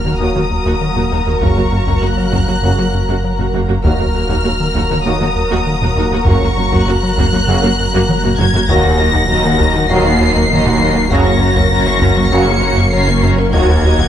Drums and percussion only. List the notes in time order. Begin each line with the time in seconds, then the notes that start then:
0.96 taiko low-mid
1.42 taiko
1.87 taiko
2.33 taiko
3.39 taiko low-mid
3.84 taiko
4.29 taiko
4.75 taiko
5.81 taiko low-mid
6.26 taiko
6.72 taiko
7.18 taiko
8.09 taiko mid
8.24 taiko low-mid
8.39 taiko low-mid
8.54 taiko low
8.69 taiko
9.15 taiko
9.60 taiko
10.66 taiko low-mid
11.11 taiko
11.57 taiko
12.02 taiko
13.08 taiko low-mid
13.53 taiko
13.99 taiko